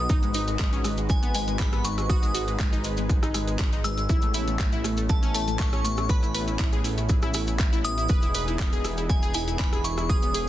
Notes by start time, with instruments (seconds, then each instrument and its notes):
Already playing: analog synth pad D#4, synth bell D#6
0.09 detuned saw bass G#1, analog synth pad G#3 F#4 B4, synth pluck D#4, kick, closed hi-hat, maracas
0.23 synth pluck G#3, closed hi-hat, maracas
0.34 synth pluck D#4, open hi-hat, maracas
0.48 synth pluck G#3, closed hi-hat, maracas
0.59 synth pluck G#3, kick, clap, closed hi-hat, maracas
0.73 synth pluck C#4, closed hi-hat, maracas
0.84 synth pluck G#3, cross-stick, open hi-hat, maracas
0.97 synth pluck G#3, closed hi-hat, maracas
1.09 synth pluck G#3, synth bell G#5, kick, closed hi-hat, maracas
1.23 synth pluck B3, closed hi-hat, maracas
1.34 synth pluck G#3, synth bell G#5, open hi-hat, maracas
1.48 synth pluck G#3, closed hi-hat, maracas
1.59 synth pluck G#3, synth bell B5, kick, clap, closed hi-hat, maracas
1.73 synth pluck B3, cross-stick, closed hi-hat, maracas
1.85 synth pluck G#3, synth bell C#6, open hi-hat, maracas
1.98 synth pluck G#3, cross-stick, closed hi-hat, maracas
2.09 synth pluck F#4, analog synth pad G#4, synth bell D#6, kick, closed hi-hat, maracas
2.22 synth pluck G#3, closed hi-hat, maracas
2.34 synth pluck F#4, open hi-hat, maracas
2.48 synth pluck G#3, closed hi-hat, maracas
2.59 kick, clap, closed hi-hat, maracas
2.73 synth pluck D#4, closed hi-hat, maracas
2.84 synth pluck G#3, open hi-hat, maracas
2.97 synth pluck G#3, closed hi-hat, maracas
3.09 synth pluck G#3, kick, closed hi-hat, maracas
3.23 synth pluck D#4, cross-stick, closed hi-hat, maracas
3.34 synth pluck G#3, cross-stick, open hi-hat, maracas
3.48 synth pluck G#3, closed hi-hat, maracas
3.59 synth pluck G#3, kick, clap, closed hi-hat, maracas
3.72 synth pluck D#4, closed hi-hat, maracas
3.84 synth pluck G#3, synth bell E6, open hi-hat, maracas
3.98 synth pluck G#3, closed hi-hat, maracas
4.09 detuned saw bass A1, analog synth pad A3 B3 C#4, synth pluck E4, kick, closed hi-hat, maracas
4.22 synth pluck A3, closed hi-hat, maracas
4.34 synth pluck E4, open hi-hat, maracas
4.47 synth pluck A3, closed hi-hat, maracas
4.59 synth pluck A3, kick, clap, closed hi-hat, maracas
4.72 synth pluck E4, closed hi-hat, maracas
4.84 synth pluck A3, cross-stick, open hi-hat, maracas
4.97 synth pluck A3, closed hi-hat, maracas
5.09 synth pluck A3, synth bell A5, kick, closed hi-hat, maracas
5.23 synth pluck C#4, closed hi-hat, maracas
5.34 synth pluck A3, synth bell A5, open hi-hat, maracas
5.48 synth pluck A3, closed hi-hat, maracas
5.59 synth pluck A3, synth bell C#6, kick, clap, closed hi-hat, maracas
5.73 synth pluck C#4, cross-stick, closed hi-hat, maracas
5.84 synth pluck A3, synth bell C#6, open hi-hat, maracas
5.97 synth pluck A3, cross-stick, closed hi-hat, maracas
6.09 synth pluck B4, synth bell B5, kick, closed hi-hat, maracas
6.23 synth pluck E4, closed hi-hat, maracas
6.34 synth pluck B4, open hi-hat, maracas
6.48 synth pluck E4, closed hi-hat, maracas
6.59 synth pluck E4, kick, clap, closed hi-hat, maracas
6.72 synth pluck G#4, closed hi-hat, maracas
6.84 synth pluck E4, open hi-hat, maracas
6.98 synth pluck E4, closed hi-hat, maracas
7.09 synth pluck E4, kick, closed hi-hat, maracas
7.22 synth pluck E4, cross-stick, closed hi-hat, maracas
7.34 synth pluck E4, cross-stick, open hi-hat, maracas
7.47 synth pluck E4, closed hi-hat, maracas
7.59 synth pluck E4, kick, clap, closed hi-hat, maracas
7.73 synth pluck E4, closed hi-hat, maracas
7.84 synth pluck E4, synth bell D#6, open hi-hat, maracas
7.98 synth pluck E4, closed hi-hat, maracas
8.09 detuned saw bass E1, analog synth pad E3 D#4 G#4, synth pluck B4, kick, closed hi-hat, maracas
8.22 synth pluck E4, closed hi-hat, maracas
8.34 synth pluck B4, open hi-hat, maracas
8.48 synth pluck E4, closed hi-hat, maracas
8.59 synth pluck E4, kick, clap, closed hi-hat, maracas
8.72 synth pluck G#4, closed hi-hat, maracas
8.84 synth pluck E4, cross-stick, open hi-hat, maracas
8.97 synth pluck E4, closed hi-hat, maracas
9.09 synth pluck E4, synth bell G#5, kick, closed hi-hat, maracas
9.22 synth pluck G#4, closed hi-hat, maracas
9.34 synth pluck E4, synth bell G#5, open hi-hat, maracas
9.48 synth pluck E4, closed hi-hat, maracas
9.59 synth pluck E4, synth bell B5, kick, clap, closed hi-hat, maracas
9.73 synth pluck G#4, cross-stick, closed hi-hat, maracas
9.84 synth pluck E4, synth bell C#6, open hi-hat, maracas
9.98 synth pluck E4, cross-stick, closed hi-hat, maracas
10.09 analog synth pad C#4, synth pluck G#4, synth bell D#6, kick, closed hi-hat, maracas
10.22 synth pluck B3, closed hi-hat, maracas
10.34 synth pluck G#4, open hi-hat, maracas